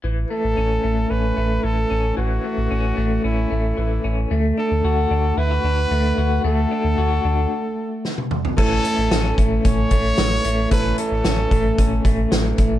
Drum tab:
CC |----------------|----------------|----------------|----------------|
HH |----------------|----------------|----------------|----------------|
SD |----------------|----------------|----------------|------------o---|
T1 |----------------|----------------|----------------|-------------o--|
T2 |----------------|----------------|----------------|--------------o-|
FT |----------------|----------------|----------------|---------------o|
BD |----------------|----------------|----------------|----------------|

CC |x---------------|----------------|
HH |--x-x-x-x-x-x-x-|x-x-x-x-x-x-x-x-|
SD |----o-------o---|----o-------o---|
T1 |----------------|----------------|
T2 |----------------|----------------|
FT |----------------|----------------|
BD |o-----o-o-o-----|o-----o-o-o---o-|